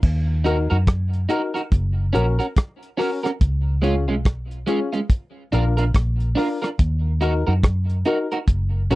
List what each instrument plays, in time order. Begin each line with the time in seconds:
0.03 fingered electric bass D#2, kick, crash
0.44 clean electric guitar D#4 F#4 A#4, upright piano D#4 F#4 A#4, closed hi-hat
0.70 fingered electric bass F#2, clean electric guitar D#4 F#4 A#4
0.87 kick, cross-stick, closed hi-hat
1.13 closed hi-hat
1.29 clean electric guitar D#4 F#4 A#4, upright piano D#4 F#4 A#4, closed hi-hat
1.54 clean electric guitar D#4 F#4 A#4, closed hi-hat
1.72 fingered electric bass F#1, kick, closed hi-hat
2.13 fingered electric bass A#1, clean electric guitar C#4 F#4 A#4, upright piano C#4 F#4 A#4, closed hi-hat
2.39 clean electric guitar C#4 F#4 A#4, closed hi-hat
2.56 kick, cross-stick, closed hi-hat
2.83 closed hi-hat
2.97 clean electric guitar C#4 F#4 A#4, upright piano C#4 F#4 A#4, cross-stick, open hi-hat
3.23 clean electric guitar C#4 F#4 A#4, cross-stick, closed hi-hat
3.41 fingered electric bass C#2, kick, closed hi-hat
3.82 clean electric guitar G#3 C#4 F4, upright piano C#4 F4 G#4, closed hi-hat
4.08 fingered electric bass B1, clean electric guitar G#3 C#4 F4
4.25 kick, cross-stick, closed hi-hat
4.51 closed hi-hat
4.67 clean electric guitar G#3 C#4 F4, upright piano C#4 F4 G#4, closed hi-hat
4.93 clean electric guitar G#3 C#4 F4, closed hi-hat
5.10 kick, closed hi-hat
5.52 fingered electric bass A#1, clean electric guitar D4 F4 A#4, upright piano D4 F4 A#4, closed hi-hat
5.77 clean electric guitar D4 F4 A#4, closed hi-hat
5.94 fingered electric bass A#1, kick, cross-stick, closed hi-hat
6.20 closed hi-hat
6.35 clean electric guitar D4 F4 A#4, upright piano D4 F4 A#4, cross-stick, open hi-hat
6.62 clean electric guitar D4 F4 A#4, cross-stick, closed hi-hat
6.79 fingered electric bass D#2, kick, closed hi-hat
7.21 clean electric guitar D#4 F#4 A#4, upright piano D#4 F#4 A#4, closed hi-hat
7.47 fingered electric bass F#2, clean electric guitar D#4 F#4 A#4
7.63 kick, cross-stick, closed hi-hat
7.90 closed hi-hat
8.05 clean electric guitar D#4 F#4 A#4, upright piano D#4 F#4 A#4, closed hi-hat
8.32 clean electric guitar D#4 F#4 A#4, closed hi-hat
8.48 fingered electric bass F#1, kick, closed hi-hat
8.90 fingered electric bass A#1, upright piano C#4 F#4 A#4, clean electric guitar C#4 F#4 A#4, closed hi-hat